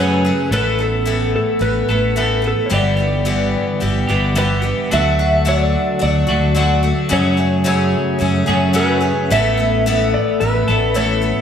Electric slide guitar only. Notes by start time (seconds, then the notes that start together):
0.00 B4
0.54 B4
0.80 A4
1.36 A4
1.62 B4
2.48 A4
2.66 C#5
2.74 D5
4.38 B4
4.94 E5
5.49 D5
6.03 D5
7.13 C#5
7.68 C#5
8.76 B4
9.32 E5
10.14 D5
10.40 B4
10.96 C#5